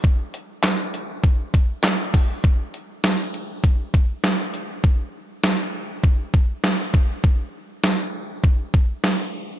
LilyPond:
\new DrumStaff \with { instrumentName = "Drums" } \drummode { \time 4/4 \tempo 4 = 100 <hh bd>8 hh8 <hc hh sn>8 hh8 <hh bd>8 <hh bd>8 <hc hh sn>8 <hho bd>8 | <hh bd>8 hh8 <hh sn>8 hh8 <hh bd>8 <hh bd>8 <hh sn>8 hh8 | bd4 sn4 bd8 bd8 sn8 bd8 | bd4 sn4 bd8 bd8 sn4 | }